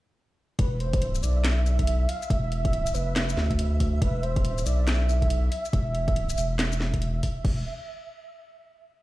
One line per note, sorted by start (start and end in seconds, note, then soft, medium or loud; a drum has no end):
0.59 1.22 E1 medium
0.59 0.81 B4 medium
0.59 7.46 E5 medium
0.59 kick loud
0.59 closed hi-hat medium
0.80 1.24 C5 loud
0.80 closed hi-hat medium
0.93 kick loud
0.93 closed hi-hat medium
1.02 closed hi-hat medium
1.15 shaker medium
1.22 2.08 B1 medium
1.22 1.45 D5 loud
1.22 shaker medium
1.44 2.10 E5 loud
1.44 snare loud
1.44 clap medium
1.44 closed hi-hat medium
1.66 shaker medium
1.79 kick medium
1.79 closed hi-hat medium
1.87 closed hi-hat medium
2.08 2.31 F5 loud
2.08 open hi-hat loud
2.22 shaker medium
2.30 2.93 E1 loud
2.30 2.96 E5 loud
2.30 kick loud
2.30 closed hi-hat medium
2.52 closed hi-hat medium
2.65 kick loud
2.65 closed hi-hat medium
2.73 closed hi-hat medium
2.86 shaker medium
2.94 3.36 F1 loud
2.94 3.37 B4 loud
2.94 shaker medium
3.16 snare loud
3.16 clap medium
3.16 closed hi-hat medium
3.29 shaker medium
3.37 4.00 D2 loud
3.37 snare medium
3.51 kick medium
3.51 closed hi-hat medium
3.59 closed hi-hat medium
3.80 kick medium
3.80 open hi-hat medium
4.01 4.47 E1 loud
4.01 4.24 B4 loud
4.01 kick loud
4.01 closed hi-hat medium
4.23 4.65 C5 loud
4.23 closed hi-hat soft
4.36 kick loud
4.36 closed hi-hat medium
4.45 4.65 D#1 loud
4.45 closed hi-hat medium
4.58 shaker medium
4.66 5.50 B1 loud
4.66 4.89 D5 loud
4.66 shaker medium
4.87 5.73 E5 loud
4.87 snare loud
4.87 clap medium
4.87 closed hi-hat medium
5.09 shaker medium
5.22 kick medium
5.22 closed hi-hat medium
5.30 closed hi-hat medium
5.52 open hi-hat medium
5.65 shaker medium
5.73 6.36 E1 loud
5.73 6.98 E5 loud
5.73 kick loud
5.73 closed hi-hat medium
5.95 closed hi-hat soft
6.08 kick loud
6.08 closed hi-hat medium
6.16 closed hi-hat medium
6.29 shaker medium
6.37 7.22 E1 loud
6.37 shaker medium
6.59 snare loud
6.59 clap medium
6.59 closed hi-hat medium
6.72 shaker medium
6.80 snare medium
6.94 kick medium
6.94 closed hi-hat medium
7.02 closed hi-hat medium
7.23 kick medium
7.23 open hi-hat medium
7.45 7.65 E1 loud
7.45 kick loud
7.45 crash medium